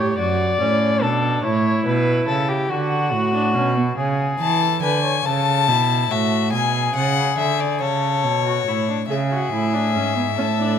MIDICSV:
0, 0, Header, 1, 5, 480
1, 0, Start_track
1, 0, Tempo, 841515
1, 824, Time_signature, 6, 3, 24, 8
1, 2269, Tempo, 852273
1, 6104, End_track
2, 0, Start_track
2, 0, Title_t, "Violin"
2, 0, Program_c, 0, 40
2, 2507, Note_on_c, 0, 81, 84
2, 2731, Note_off_c, 0, 81, 0
2, 2747, Note_on_c, 0, 80, 82
2, 2986, Note_on_c, 0, 81, 89
2, 2995, Note_off_c, 0, 80, 0
2, 3469, Note_on_c, 0, 76, 82
2, 3477, Note_off_c, 0, 81, 0
2, 3703, Note_off_c, 0, 76, 0
2, 3706, Note_on_c, 0, 80, 76
2, 3941, Note_off_c, 0, 80, 0
2, 3947, Note_on_c, 0, 78, 80
2, 4183, Note_off_c, 0, 78, 0
2, 4186, Note_on_c, 0, 76, 77
2, 4310, Note_on_c, 0, 74, 74
2, 4318, Note_off_c, 0, 76, 0
2, 4425, Note_off_c, 0, 74, 0
2, 4428, Note_on_c, 0, 73, 87
2, 5140, Note_off_c, 0, 73, 0
2, 5157, Note_on_c, 0, 76, 60
2, 6104, Note_off_c, 0, 76, 0
2, 6104, End_track
3, 0, Start_track
3, 0, Title_t, "Violin"
3, 0, Program_c, 1, 40
3, 0, Note_on_c, 1, 73, 82
3, 100, Note_off_c, 1, 73, 0
3, 103, Note_on_c, 1, 74, 90
3, 581, Note_on_c, 1, 69, 78
3, 590, Note_off_c, 1, 74, 0
3, 814, Note_off_c, 1, 69, 0
3, 818, Note_on_c, 1, 73, 84
3, 1055, Note_off_c, 1, 73, 0
3, 1058, Note_on_c, 1, 71, 88
3, 1295, Note_off_c, 1, 71, 0
3, 1299, Note_on_c, 1, 69, 85
3, 1418, Note_on_c, 1, 67, 78
3, 1426, Note_off_c, 1, 69, 0
3, 1540, Note_on_c, 1, 66, 90
3, 1548, Note_off_c, 1, 67, 0
3, 2265, Note_off_c, 1, 66, 0
3, 2268, Note_on_c, 1, 68, 68
3, 2629, Note_on_c, 1, 69, 60
3, 2638, Note_off_c, 1, 68, 0
3, 2745, Note_off_c, 1, 69, 0
3, 2748, Note_on_c, 1, 71, 70
3, 2863, Note_off_c, 1, 71, 0
3, 2866, Note_on_c, 1, 73, 64
3, 2988, Note_on_c, 1, 69, 69
3, 2996, Note_off_c, 1, 73, 0
3, 3229, Note_on_c, 1, 64, 64
3, 3238, Note_off_c, 1, 69, 0
3, 3468, Note_on_c, 1, 66, 64
3, 3477, Note_off_c, 1, 64, 0
3, 3704, Note_off_c, 1, 66, 0
3, 3707, Note_on_c, 1, 68, 74
3, 4429, Note_on_c, 1, 69, 68
3, 4438, Note_off_c, 1, 68, 0
3, 4789, Note_off_c, 1, 69, 0
3, 4793, Note_on_c, 1, 66, 59
3, 4917, Note_on_c, 1, 64, 58
3, 4925, Note_off_c, 1, 66, 0
3, 5036, Note_off_c, 1, 64, 0
3, 5039, Note_on_c, 1, 62, 58
3, 5085, Note_off_c, 1, 62, 0
3, 5156, Note_on_c, 1, 68, 63
3, 5850, Note_off_c, 1, 68, 0
3, 5877, Note_on_c, 1, 69, 59
3, 6104, Note_off_c, 1, 69, 0
3, 6104, End_track
4, 0, Start_track
4, 0, Title_t, "Viola"
4, 0, Program_c, 2, 41
4, 0, Note_on_c, 2, 67, 59
4, 101, Note_off_c, 2, 67, 0
4, 105, Note_on_c, 2, 66, 67
4, 339, Note_off_c, 2, 66, 0
4, 343, Note_on_c, 2, 61, 67
4, 579, Note_on_c, 2, 62, 67
4, 587, Note_off_c, 2, 61, 0
4, 820, Note_on_c, 2, 64, 69
4, 829, Note_off_c, 2, 62, 0
4, 1540, Note_off_c, 2, 64, 0
4, 1544, Note_on_c, 2, 66, 68
4, 1899, Note_off_c, 2, 66, 0
4, 1906, Note_on_c, 2, 62, 64
4, 2025, Note_off_c, 2, 62, 0
4, 2028, Note_on_c, 2, 61, 70
4, 2144, Note_off_c, 2, 61, 0
4, 2147, Note_on_c, 2, 59, 64
4, 2193, Note_off_c, 2, 59, 0
4, 5153, Note_on_c, 2, 68, 55
4, 5198, Note_off_c, 2, 68, 0
4, 5272, Note_on_c, 2, 66, 54
4, 5389, Note_off_c, 2, 66, 0
4, 5392, Note_on_c, 2, 64, 52
4, 5512, Note_on_c, 2, 62, 50
4, 5520, Note_off_c, 2, 64, 0
4, 5628, Note_off_c, 2, 62, 0
4, 5631, Note_on_c, 2, 61, 56
4, 5749, Note_off_c, 2, 61, 0
4, 5753, Note_on_c, 2, 59, 48
4, 5798, Note_off_c, 2, 59, 0
4, 5872, Note_on_c, 2, 61, 54
4, 5917, Note_off_c, 2, 61, 0
4, 5992, Note_on_c, 2, 62, 52
4, 6104, Note_off_c, 2, 62, 0
4, 6104, End_track
5, 0, Start_track
5, 0, Title_t, "Cello"
5, 0, Program_c, 3, 42
5, 0, Note_on_c, 3, 45, 60
5, 104, Note_off_c, 3, 45, 0
5, 107, Note_on_c, 3, 42, 67
5, 341, Note_off_c, 3, 42, 0
5, 345, Note_on_c, 3, 45, 63
5, 584, Note_on_c, 3, 47, 65
5, 592, Note_off_c, 3, 45, 0
5, 818, Note_off_c, 3, 47, 0
5, 822, Note_on_c, 3, 45, 72
5, 1059, Note_off_c, 3, 45, 0
5, 1062, Note_on_c, 3, 47, 64
5, 1299, Note_off_c, 3, 47, 0
5, 1303, Note_on_c, 3, 49, 60
5, 1540, Note_off_c, 3, 49, 0
5, 1544, Note_on_c, 3, 50, 66
5, 1784, Note_on_c, 3, 45, 60
5, 1792, Note_off_c, 3, 50, 0
5, 2025, Note_on_c, 3, 47, 65
5, 2033, Note_off_c, 3, 45, 0
5, 2264, Note_off_c, 3, 47, 0
5, 2268, Note_on_c, 3, 49, 67
5, 2504, Note_off_c, 3, 49, 0
5, 2507, Note_on_c, 3, 52, 72
5, 2743, Note_off_c, 3, 52, 0
5, 2748, Note_on_c, 3, 50, 66
5, 2984, Note_off_c, 3, 50, 0
5, 2989, Note_on_c, 3, 49, 71
5, 3229, Note_on_c, 3, 47, 67
5, 3237, Note_off_c, 3, 49, 0
5, 3465, Note_off_c, 3, 47, 0
5, 3468, Note_on_c, 3, 45, 62
5, 3705, Note_on_c, 3, 47, 70
5, 3714, Note_off_c, 3, 45, 0
5, 3941, Note_off_c, 3, 47, 0
5, 3944, Note_on_c, 3, 49, 66
5, 4181, Note_off_c, 3, 49, 0
5, 4185, Note_on_c, 3, 50, 58
5, 4425, Note_on_c, 3, 49, 63
5, 4434, Note_off_c, 3, 50, 0
5, 4669, Note_on_c, 3, 47, 60
5, 4678, Note_off_c, 3, 49, 0
5, 4909, Note_off_c, 3, 47, 0
5, 4912, Note_on_c, 3, 45, 60
5, 5150, Note_off_c, 3, 45, 0
5, 5153, Note_on_c, 3, 49, 65
5, 5377, Note_off_c, 3, 49, 0
5, 5392, Note_on_c, 3, 45, 63
5, 5631, Note_on_c, 3, 44, 59
5, 5640, Note_off_c, 3, 45, 0
5, 5872, Note_on_c, 3, 45, 68
5, 5880, Note_off_c, 3, 44, 0
5, 6104, Note_off_c, 3, 45, 0
5, 6104, End_track
0, 0, End_of_file